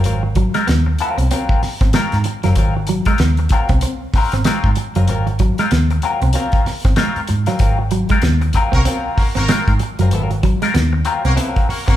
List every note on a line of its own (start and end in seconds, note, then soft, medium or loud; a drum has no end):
0.04 0.48 G#1 loud
0.04 0.27 F#3 medium
0.04 0.23 C4 medium
0.04 0.23 F4 medium
0.04 0.22 A#4 medium
0.04 closed hi-hat medium
0.23 muted clean electric guitar stroke soft
0.35 0.48 F#3 medium
0.35 muted clean electric guitar stroke soft
0.35 kick medium
0.35 closed hi-hat medium
0.54 0.66 F#3 soft
0.54 0.62 G#3 medium
0.54 0.68 C4 medium
0.54 0.68 F4 medium
0.54 0.67 A#4 medium
0.54 snare soft
0.54 closed hi-hat medium
0.67 0.95 D#2 medium
0.67 0.79 B3 medium
0.67 snare loud
0.67 closed hi-hat medium
0.86 muted clean electric guitar stroke soft
0.99 1.22 F#3 medium
0.99 1.18 C4 medium
0.99 1.18 F4 medium
0.99 1.17 A#4 loud
0.99 closed hi-hat medium
1.18 1.29 C2 medium
1.18 1.25 C4 medium
1.18 muted clean electric guitar stroke soft
1.18 closed hi-hat soft
1.31 1.61 F#3 medium
1.31 1.61 C4 medium
1.31 1.42 C4 loud
1.31 1.61 F4 medium
1.31 1.61 A#4 medium
1.31 closed hi-hat medium
1.49 kick loud
1.63 muted picked electric bass stroke soft
1.63 muted clean electric guitar stroke soft
1.63 snare soft
1.63 open hi-hat medium
1.81 1.92 G#1 medium
1.81 1.89 C4 medium
1.81 muted clean electric guitar stroke soft
1.81 kick loud
1.81 snare soft
1.81 closed hi-hat soft
1.93 2.16 F#3 medium
1.93 2.05 G#3 medium
1.93 2.16 C4 medium
1.93 2.17 F4 medium
1.93 2.17 A#4 loud
1.93 snare loud
1.93 closed hi-hat loud
2.12 2.24 G#2 loud
2.12 snare soft
2.12 closed hi-hat soft
2.24 muted clean electric guitar stroke soft
2.24 closed hi-hat medium
2.43 2.56 F#1 medium
2.43 2.51 F#3 medium
2.43 2.56 F#3 medium
2.43 2.57 C4 medium
2.43 2.57 F4 medium
2.43 2.57 A#4 medium
2.43 snare soft
2.43 closed hi-hat soft
2.55 2.99 G#1 loud
2.55 2.79 F#3 medium
2.55 2.76 C4 medium
2.55 2.74 F4 medium
2.55 2.74 A#4 medium
2.55 kick loud
2.55 closed hi-hat medium
2.75 muted clean electric guitar stroke medium
2.87 3.00 F#3 medium
2.87 muted clean electric guitar stroke soft
2.87 closed hi-hat medium
3.05 3.19 F#3 medium
3.05 3.15 G#3 medium
3.05 3.20 C4 medium
3.05 3.19 F4 medium
3.05 3.19 A#4 medium
3.05 kick medium
3.05 snare soft
3.05 closed hi-hat medium
3.18 3.46 D#2 medium
3.18 3.31 B3 medium
3.18 muted clean electric guitar stroke soft
3.18 snare loud
3.18 closed hi-hat medium
3.37 muted clean electric guitar stroke soft
3.37 closed hi-hat soft
3.49 3.74 F#3 medium
3.49 3.71 C4 medium
3.49 3.71 F4 medium
3.49 kick medium
3.49 snare soft
3.49 closed hi-hat medium
3.54 3.70 A#4 medium
3.69 3.80 C2 medium
3.69 3.77 C4 medium
3.69 muted clean electric guitar stroke soft
3.69 kick medium
3.69 closed hi-hat soft
3.81 3.94 C4 loud
3.81 muted clean electric guitar stroke soft
3.81 closed hi-hat medium
4.14 4.34 F#3 medium
4.14 4.34 C4 medium
4.14 4.35 F4 medium
4.14 muted picked electric bass stroke soft
4.14 muted clean electric guitar stroke soft
4.14 kick medium
4.14 snare soft
4.14 open hi-hat medium
4.18 4.34 A#4 medium
4.32 4.44 G#1 medium
4.32 4.41 C4 medium
4.32 muted clean electric guitar stroke soft
4.32 snare soft
4.32 closed hi-hat medium
4.44 4.68 F#3 medium
4.44 4.56 G#3 medium
4.44 4.68 C4 loud
4.44 4.69 F4 loud
4.44 4.69 A#4 medium
4.44 snare loud
4.44 closed hi-hat medium
4.64 4.75 G#2 medium
4.64 kick medium
4.75 muted clean electric guitar stroke medium
4.75 closed hi-hat medium
4.95 5.09 F#1 medium
4.95 5.04 F#3 medium
4.95 5.07 F#3 soft
4.95 5.08 C4 medium
4.95 5.08 F4 medium
4.95 5.09 A#4 medium
4.95 closed hi-hat soft
5.08 5.51 G#1 loud
5.08 5.31 F#3 medium
5.08 5.28 C4 medium
5.08 5.27 F4 medium
5.08 5.26 A#4 medium
5.08 closed hi-hat medium
5.27 muted clean electric guitar stroke soft
5.27 closed hi-hat soft
5.39 5.51 F#3 medium
5.39 muted clean electric guitar stroke soft
5.39 kick medium
5.39 closed hi-hat medium
5.58 5.70 F#3 medium
5.58 5.67 G#3 medium
5.58 5.71 C4 medium
5.58 5.71 F4 medium
5.58 5.72 A#4 medium
5.58 snare soft
5.58 closed hi-hat medium
5.71 5.98 D#2 medium
5.71 5.83 B3 medium
5.71 muted clean electric guitar stroke soft
5.71 snare medium
5.71 closed hi-hat medium
5.90 muted clean electric guitar stroke soft
5.90 closed hi-hat soft
6.02 6.26 F#3 medium
6.02 6.22 C4 medium
6.02 6.21 F4 medium
6.02 6.20 A#4 medium
6.02 closed hi-hat medium
6.22 6.33 C2 medium
6.22 6.30 C4 medium
6.22 muted clean electric guitar stroke soft
6.22 closed hi-hat soft
6.33 6.64 F#3 medium
6.33 6.64 C4 medium
6.33 6.46 C4 medium
6.33 6.64 F4 loud
6.33 6.65 A#4 loud
6.33 closed hi-hat medium
6.52 kick loud
6.52 closed hi-hat soft
6.66 muted picked electric bass stroke soft
6.66 muted clean electric guitar stroke soft
6.66 snare soft
6.66 open hi-hat medium
6.85 6.96 G#1 medium
6.85 6.92 C4 medium
6.85 muted clean electric guitar stroke soft
6.85 kick loud
6.85 snare soft
6.85 closed hi-hat medium
6.96 7.19 F#3 medium
6.96 7.09 G#3 medium
6.96 7.20 C4 medium
6.96 7.20 F4 loud
6.96 7.20 A#4 loud
6.96 snare loud
6.96 closed hi-hat medium
7.16 muted picked electric bass stroke soft
7.16 closed hi-hat soft
7.27 7.46 G#2 medium
7.27 muted clean electric guitar stroke soft
7.27 closed hi-hat medium
7.46 7.55 F#3 medium
7.46 7.58 F#3 medium
7.46 7.59 C4 medium
7.46 7.60 F4 medium
7.46 7.60 A#4 medium
7.46 snare soft
7.46 closed hi-hat medium
7.59 8.03 G#1 loud
7.59 7.82 F#3 medium
7.59 7.79 C4 medium
7.59 7.79 F4 medium
7.59 7.78 A#4 medium
7.59 kick loud
7.59 closed hi-hat medium
7.79 muted clean electric guitar stroke soft
7.91 8.03 F#3 medium
7.91 muted clean electric guitar stroke soft
7.91 closed hi-hat medium
8.09 8.18 G#3 medium
8.09 8.22 C4 medium
8.09 8.23 F4 medium
8.09 8.23 A#4 medium
8.09 kick medium
8.09 snare soft
8.09 closed hi-hat medium
8.13 8.22 F#3 medium
8.22 8.50 D#2 medium
8.22 8.34 B3 medium
8.22 muted clean electric guitar stroke soft
8.22 snare loud
8.22 closed hi-hat medium
8.41 muted clean electric guitar stroke soft
8.41 closed hi-hat soft
8.53 8.77 F#3 medium
8.53 8.74 C4 medium
8.53 8.73 F4 medium
8.53 8.73 A#4 medium
8.53 kick medium
8.53 snare soft
8.53 closed hi-hat medium
8.72 8.84 C2 medium
8.72 8.82 A#3 medium
8.72 8.80 C4 medium
8.72 8.82 F#4 medium
8.72 8.82 A#4 loud
8.72 muted clean electric guitar stroke soft
8.72 kick loud
8.72 closed hi-hat soft
8.85 9.16 F#3 medium
8.85 8.97 C4 loud
8.85 9.16 C4 medium
8.85 9.16 F4 medium
8.85 9.17 A#4 medium
8.85 closed hi-hat medium
9.18 9.30 A#3 medium
9.18 9.30 F#4 medium
9.18 9.30 A#4 medium
9.18 muted clean electric guitar stroke soft
9.18 muted picked electric bass stroke medium
9.18 kick medium
9.18 open hi-hat medium
9.35 9.47 G#1 medium
9.35 9.56 A#3 medium
9.35 9.43 C4 medium
9.35 9.56 F#4 loud
9.35 9.56 A#4 loud
9.35 muted clean electric guitar stroke soft
9.35 snare soft
9.35 closed hi-hat medium
9.48 9.71 F#3 medium
9.48 9.60 G#3 medium
9.48 9.72 C4 medium
9.48 9.72 F4 loud
9.48 9.73 A#4 loud
9.48 snare loud
9.48 closed hi-hat loud
9.68 9.79 G#2 loud
9.68 kick loud
9.68 closed hi-hat soft
9.79 muted clean electric guitar stroke soft
9.79 closed hi-hat medium
9.99 10.12 F#1 medium
9.99 10.07 F#3 medium
9.99 10.12 F#3 medium
9.99 10.13 C4 medium
9.99 10.13 F4 medium
9.99 10.13 A#4 medium
9.99 closed hi-hat medium
10.11 10.55 G#1 loud
10.11 10.35 F#3 medium
10.11 10.32 C4 medium
10.11 10.31 F4 medium
10.11 10.30 A#4 medium
10.11 closed hi-hat medium
10.31 muted clean electric guitar stroke soft
10.31 closed hi-hat soft
10.43 10.55 F#3 medium
10.43 muted clean electric guitar stroke soft
10.43 kick medium
10.43 closed hi-hat medium
10.62 10.73 F#3 soft
10.62 10.70 G#3 medium
10.62 10.73 C4 medium
10.62 10.74 F4 medium
10.62 10.74 A#4 medium
10.62 snare soft
10.62 closed hi-hat medium
10.74 11.02 D#2 medium
10.74 10.86 B3 medium
10.74 muted clean electric guitar stroke soft
10.74 snare loud
10.74 closed hi-hat medium
10.93 muted clean electric guitar stroke soft
11.05 11.28 F#3 medium
11.05 11.24 C4 medium
11.05 11.23 F4 medium
11.05 11.22 A#4 medium
11.05 closed hi-hat medium
11.23 11.36 C2 medium
11.23 11.34 A#3 loud
11.23 11.33 C4 medium
11.23 11.33 F#4 medium
11.23 11.34 A#4 loud
11.23 muted clean electric guitar stroke soft
11.23 closed hi-hat soft
11.35 11.48 F3 medium
11.35 11.49 B3 medium
11.35 11.49 C4 loud
11.35 11.49 E4 medium
11.35 11.50 A4 loud
11.35 closed hi-hat medium
11.48 11.66 F#3 medium
11.48 11.67 C4 medium
11.48 11.67 F4 medium
11.48 11.67 A#4 loud
11.56 kick medium
11.56 closed hi-hat soft
11.68 11.82 A#3 medium
11.68 11.82 F#4 medium
11.68 11.82 A#4 medium
11.68 muted clean electric guitar stroke soft
11.68 muted picked electric bass stroke soft
11.68 open hi-hat medium
11.86 11.97 G#1 medium
11.86 11.97 A#3 medium
11.86 11.95 C4 medium
11.86 11.97 F#4 loud
11.86 11.97 A#4 loud
11.86 muted clean electric guitar stroke soft
11.86 kick loud
11.86 snare soft
11.86 closed hi-hat medium